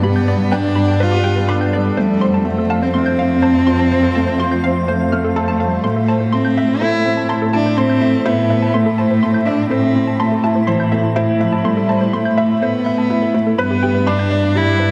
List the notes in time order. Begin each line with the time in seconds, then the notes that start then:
Already playing: G2 G3 B3 D4 B4 D5
0.03 G3 B3 A4 B5
0.16 G6
0.28 B3 D5
0.52 D4 B4 G5
0.75 D4 B5
0.88 G5
1.00 F4 B4
1.12 G4
1.24 G3 G5
1.36 B4
1.49 D4 B5
1.61 G6
1.73 G3 B3 D5
1.97 F2 A3 F4 C5 F5
2.21 C5 C6
2.34 A5
2.45 A3
2.58 A4
2.70 F5 A5
2.83 C4 C5
2.94 A3 C4 C6
3.06 G6
3.19 C4 F5
3.42 C5 A5
3.67 F4 C6
3.79 A5
3.92 C5
4.03 A4
4.15 A3 A5
4.28 C5
4.39 F4 C6
4.51 G6
4.64 C4 F5
4.88 A3 C5, swell
5.12 A3 F6
5.24 A4
5.36 A4 A5
5.48 A5
5.60 G3 C5 F5
5.84 A2 A3 E4 A4 E5 C6
5.96 A4
6.08 C5 A5
6.20 C5
6.33 A3 C4 C6
6.45 G6
6.57 E5
6.81 A3 E4 C5
7.05 C4
7.17 A5
7.29 A5 C6
7.42 A4
7.53 D4 E4 A5
7.66 C5
7.77 C4 C5 C6
7.90 G6
8.02 A3 E5
8.26 B3 E4 C5
8.50 E5
8.62 A5
8.74 A3 C6
8.86 A4
8.98 C5 A5
9.11 C5
9.23 A3 C6
9.34 G6
9.45 D4 E5
9.70 A3 C4 C5 B5
9.95 C4
10.07 A5
10.19 A3 A5 C6
10.32 A4
10.44 E4 A5
10.55 C5
10.67 E3 C5 C6
10.80 G6
10.92 A3 E5
11.16 E4 C5
11.41 F3 E5
11.53 A5
11.64 G3 A3 C6
11.77 A4
11.89 C5 A5
12.01 C5
12.13 A3 C6
12.25 G6
12.38 E5
12.62 A3 B3 C5
12.86 E5
12.98 A5
13.10 E4
13.22 A4
13.34 A3 E4 C5
13.47 A4
13.58 G2 G3 B3 D4 B4 D5 B5
13.71 G4
13.83 G3 G5
13.95 B4
14.07 D4 B5
14.19 G6
14.31 D5
14.55 G3 E4 D5
14.79 B4